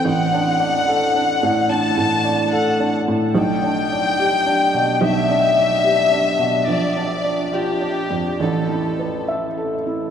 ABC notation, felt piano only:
X:1
M:4/4
L:1/8
Q:1/4=72
K:G
V:1 name="Felt piano"
(3A,,, D d (3A D A,, (3D A,, d (3A D A,, | (3B,,, D d (3G D B,, (3B,,, D d (3G D B,, | (3_B,,, D d (3=F D =F,, (3A,,, E =B (3e A E |]